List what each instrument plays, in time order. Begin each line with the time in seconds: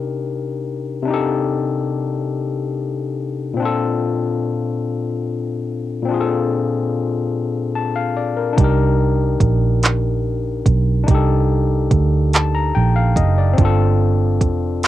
Already playing: tine electric piano C3 D4 D#4 G4 A#4
1.02 tine electric piano C3 D4
1.08 tine electric piano D#4 G4
1.14 tine electric piano A4
3.54 tine electric piano A#2 C4
3.60 tine electric piano D4 F4
3.65 tine electric piano A4
6.03 tine electric piano A#2 C4
6.09 tine electric piano D4 F4
6.14 tine electric piano G#4
6.20 tine electric piano A4
7.75 tine electric piano A5
7.96 tine electric piano F5
8.17 tine electric piano D5
8.37 tine electric piano A#4
8.53 tine electric piano D4 D#4
8.58 fingered electric bass C2, tine electric piano G4, kick, closed hi-hat
8.64 tine electric piano A#4
9.40 fingered electric bass A#1, kick, closed hi-hat
9.83 clap, closed hi-hat
10.66 fingered electric bass B1, kick, closed hi-hat
11.04 tine electric piano D4 D#4
11.08 fingered electric bass C2, tine electric piano G4, kick, closed hi-hat
11.14 tine electric piano A4
11.91 fingered electric bass D2, kick, closed hi-hat
12.33 tine electric piano A5, clap, closed hi-hat
12.55 tine electric piano A#5
12.75 fingered electric bass A#1, tine electric piano G5
12.96 tine electric piano F5
13.16 fingered electric bass F#1, tine electric piano D#5, kick, closed hi-hat
13.38 tine electric piano D5
13.53 tine electric piano C4 D4
13.58 fingered electric bass G1, tine electric piano F4, kick, closed hi-hat
13.65 tine electric piano A4
14.41 fingered electric bass F1, kick, closed hi-hat
14.83 closed hi-hat